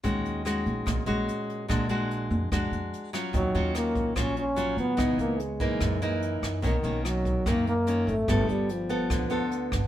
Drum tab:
HH |xxxxxxxx|xxxxxxxx|xxxxxxxx|xxxxxxxx|
SD |--r-r---|r---r--r|--r-r---|r---r--r|
BD |o---o---|o---o---|o--oo---|o--oo---|

HH |xxxxxxxx|xxxxxxxx|
SD |--r-r---|r---r--r|
BD |o--oo---|o---o--o|